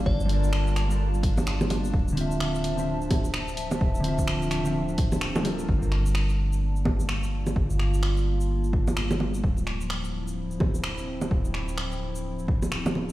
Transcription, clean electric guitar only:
X:1
M:4/4
L:1/16
Q:"Swing 16ths" 1/4=128
K:Gdor
V:1 name="Clean electric guitar"
z2 [G,FAB]4- [G,FAB] [G,FAB] z8 | z2 [D,CFe]4- [D,CFe] [D,CFe] z8 | z2 [D,CFe]4- [D,CFe] [D,CFe] z6 [G,FAB]2- | [G,FAB]2 z12 z2 |
z16 | z16 | z16 |]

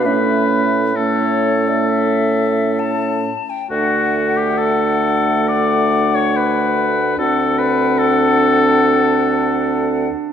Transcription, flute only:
X:1
M:4/4
L:1/16
Q:1/4=69
K:D
V:1 name="Flute"
e4 c3 d e4 a3 g | f16 | f12- f2 z2 |]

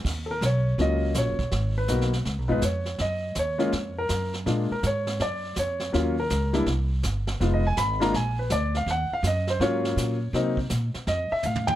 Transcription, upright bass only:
X:1
M:4/4
L:1/8
Q:"Swing" 1/4=163
K:Ebm
V:1 name="Upright bass" clef=bass
E,,2 C,,2 D,,2 (3B,,, G,,, E,,, | A,,,2 C,,2 (3D,, C,, A,,, F,,2 | G,,2 E,,2 F,,2 G,,2 | B,, z A,,2 G,,2 F,,2 |
E,,2 D,,2 =C,,2 =G,,,2 | F,,,2 A,,,2 B,,,2 =D,,2 | E,, z G,,2 A,,2 B,,2 | =C,2 B,, z F,, z =A,,2 |]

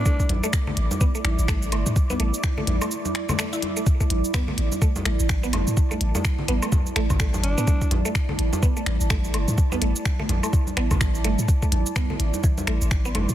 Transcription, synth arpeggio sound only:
X:1
M:4/4
L:1/16
Q:"Swing 16ths" 1/4=126
K:Am
V:1 name="Synth arpeggio sound"
A, z2 A, z A, z2 B, A, z2 A, z A, z | z B, A, z2 A, z A, z3 A, A, E z A, | z A, z2 B, A, z2 A, z A, z2 B, A, z | z A, z A, z2 B, A, z2 A, z A, z2 B, |
A, z2 A, z A, z2 B, A, z2 A, z A, z | z B, A, z2 A, z A, z2 B, A, z2 A, z | z A, z2 B, A, z2 E, z A, z2 B, A, z |]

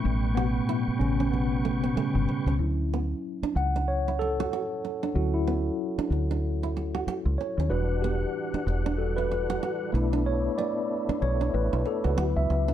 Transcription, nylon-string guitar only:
X:1
M:4/4
L:1/16
Q:"Swing 16ths" 1/4=94
K:D
V:1 name="Nylon-string guitar"
z2 F z E z2 C z2 A, B, A, z2 C | z2 B, z2 D z D z E z F F z2 D | z2 B, z2 D z D z E z F F z2 C | z2 B, z2 D z D z E z F F z2 D |
z2 B, z2 D z D z E z F F z2 D |]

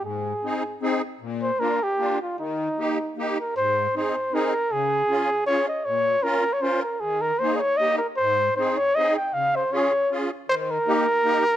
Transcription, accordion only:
X:1
M:3/4
L:1/8
Q:"Swing" 1/4=156
K:Eb
V:1 name="Accordion"
A,,2 [CEA] z [CEA] z | B,,2 [B,DF] z [B,DF] z | E,2 [B,EG] z [B,EG] z | [K:Ab] A,,2 [CEA] z [CEA] z |
D,2 [DFA] z [DFA] z | B,,2 [DFB] z [DFB] z | E,2 [B,EA] z [B,EG] z | A,,2 [CEA] z [CEA] z |
D,2 [DFA] z [DFA] z | E,2 [B,EG] z [B,EG] z |]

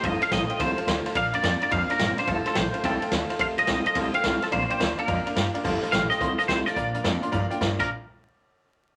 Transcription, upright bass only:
X:1
M:4/4
L:1/8
Q:"Swing" 1/4=214
K:Bb
V:1 name="Upright bass" clef=bass
F,,, z A,,, z C,, z D,, z | B,,, F,, F,, z F,, z G,,, z | F,,, z A,,, z C,, z D,, z | F,,, C,, C,, z C,, z C,, z |
B,,, z D,, z F,, z G,, z | F,,, z A,,, z C,, z C,, z | B,,, E,, F,, z G,, z G,, B,,, | z8 |]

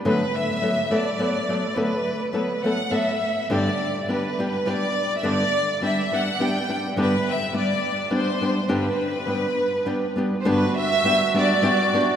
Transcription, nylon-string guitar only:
X:1
M:3/4
L:1/8
Q:1/4=104
K:G
V:1 name="Nylon-string guitar"
[D,F,A,B,A] z [F,A,B,A] [F,A,B,A] [F,A,B,A] [F,A,B,A] | [D,F,A,B,A] z [F,A,B,A] [F,A,B,A] [F,A,B,A] z | [G,,D,G,B,DG] z [G,B,DG] [G,B,DG] [G,B,DG] z | [G,,D,G,B,DG] z [G,B,DG] [G,B,DG] [G,B,DG] [G,B,DG] |
[G,,D,G,B,DG] z [G,B,DG] z [G,B,DG] [G,B,DG] | [G,,D,G,B,DG] z [G,B,DG] z [G,B,DG] [G,B,DG] | [G,,D,G,B,DG] z [G,B,DG] [G,B,DG] [G,B,DG] [G,B,DG] |]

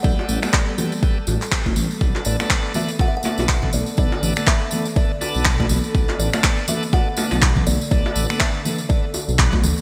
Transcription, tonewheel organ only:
X:1
M:4/4
L:1/16
Q:"Swing 16ths" 1/4=122
K:Bm
V:1 name="Tonewheel organ"
[B,GA]3 [B,GA]3 [B,GA] z [B,GA] z3 [B,GA] z3 | [B,DA]3 [B,DA]3 [B,DA] z [B,DA] z [B,DA]3 [B,DA] z2 | [B,DA]3 [B,DA]3 [B,DA] z [B,DA] z [B,DA]3 [B,DA] z2 | [B,DA]3 [B,DA]3 [B,DA] z [B,DA] z [B,DA]3 [B,DA] z2 |
[B,DA]3 [B,DA]3 [B,DA] z [B,DA] z3 [B,DF] z3 |]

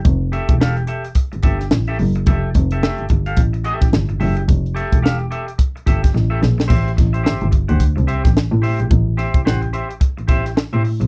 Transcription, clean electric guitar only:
X:1
M:4/4
L:1/16
Q:"Swing 16ths" 1/4=108
K:Am
V:1 name="Clean electric guitar"
z2 [GAe] z [GAf] z [GAe] z3 [GAe] z2 [GAe] z2 | [GAe] z2 [GAe] [GAe] z2 [GAf] z2 [GAe] z3 [GAe] z | z2 [GAe] z [GAf] z [GAe] z3 [GAe] z2 [GAe] z2 | [Gce] z2 [Gce] [Gce] z2 [Gc^f] z2 [Gce] z3 [Gce] z |
z2 [Gce] z [Gc^f] z [Gce] z3 [Gce] z2 [Gce] z2 |]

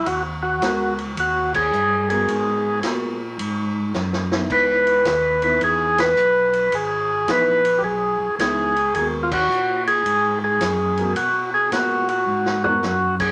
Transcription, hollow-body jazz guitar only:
X:1
M:4/4
L:1/8
Q:"Swing" 1/4=108
K:G#m
V:1 name="Hollow-body jazz guitar"
z2 [G,B,FA] z4 [G,B,FA]- | [G,B,FA]2 [G,B,FA] z4 [E,B,D]- | [E,B,D]2 z [E,B,D]3 z2 | z2 [E,B,D] z3 [E,B,D] z |
[G,B,FA] z6 [G,B,FA] | z2 [G,B,FA] z2 [G,B,FA] z2 |]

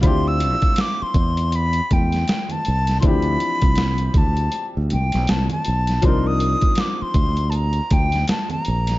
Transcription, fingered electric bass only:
X:1
M:4/4
L:1/16
Q:"Swing 16ths" 1/4=80
K:Dm
V:1 name="Fingered electric bass" clef=bass
D,,3 z3 E,,4 E,,2 z2 C,,2 | D,,2 z C,,3 D,,2 z D,, C,, =B,,, C,, z B,,,2 | C,,3 z3 D,,4 D,,2 z2 B,,,2 |]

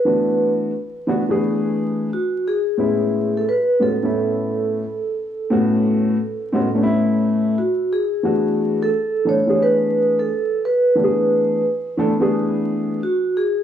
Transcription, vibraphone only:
X:1
M:4/4
L:1/16
Q:"Swing 16ths" 1/4=88
K:Emix
V:1 name="Vibraphone"
B4 z8 F2 G2- | G3 A B2 A8- A2- | A12 F2 G2- | G3 A3 c2 B3 A3 B2- |
B4 z8 F2 G2 |]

